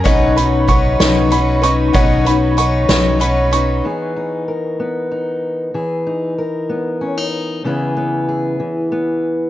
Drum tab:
HH |xxxxxx|xxxxxx|------|------|
SD |---o--|---o--|------|------|
BD |o-o---|o-----|------|------|

HH |------|
SD |------|
BD |------|